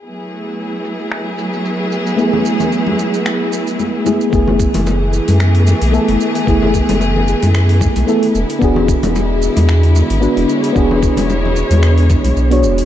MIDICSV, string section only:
0, 0, Header, 1, 2, 480
1, 0, Start_track
1, 0, Key_signature, 3, "minor"
1, 0, Tempo, 535714
1, 40, Time_signature, 4, 2, 24, 8
1, 11515, End_track
2, 0, Start_track
2, 0, Title_t, "String section"
2, 0, Program_c, 0, 48
2, 34, Note_on_c, 0, 68, 71
2, 36, Note_on_c, 0, 59, 62
2, 36, Note_on_c, 0, 64, 63
2, 37, Note_on_c, 0, 54, 70
2, 37, Note_on_c, 0, 57, 62
2, 3841, Note_off_c, 0, 68, 0
2, 3842, Note_off_c, 0, 54, 0
2, 3842, Note_off_c, 0, 57, 0
2, 3842, Note_off_c, 0, 59, 0
2, 3842, Note_off_c, 0, 64, 0
2, 3877, Note_on_c, 0, 52, 76
2, 3877, Note_on_c, 0, 59, 69
2, 3878, Note_on_c, 0, 57, 71
2, 3878, Note_on_c, 0, 68, 78
2, 7443, Note_off_c, 0, 52, 0
2, 7443, Note_off_c, 0, 57, 0
2, 7443, Note_off_c, 0, 68, 0
2, 7479, Note_on_c, 0, 50, 74
2, 7482, Note_on_c, 0, 56, 62
2, 7482, Note_on_c, 0, 64, 77
2, 9363, Note_off_c, 0, 59, 0
2, 9402, Note_on_c, 0, 73, 64
2, 11515, Note_off_c, 0, 50, 0
2, 11515, Note_off_c, 0, 56, 0
2, 11515, Note_off_c, 0, 64, 0
2, 11515, Note_off_c, 0, 73, 0
2, 11515, End_track
0, 0, End_of_file